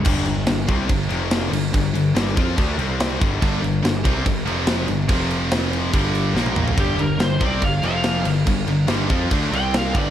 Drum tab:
CC |x-x-x-x-x-x-x-x-|x-x-x-x-x-x-x-x-|x-x-x-x-x-x-x-x-|x-x-x-x-x-x-----|
SD |----o-------o---|----o-------o---|----o-------o---|----o-------o---|
T1 |----------------|----------------|----------------|-------------o--|
T2 |----------------|----------------|----------------|--------------o-|
FT |----------------|----------------|----------------|---------------o|
BD |o-----o-o-------|o-----o-o-----o-|o-----o-o-------|o-------o-------|

CC |x-x-x-x-x-x-x-x-|x-x-x-x-x-x-x-x-|
SD |----o-------o---|----o-------o---|
T1 |----------------|----------------|
T2 |----------------|----------------|
FT |----------------|----------------|
BD |o-----o-o-------|o-----o-o-----o-|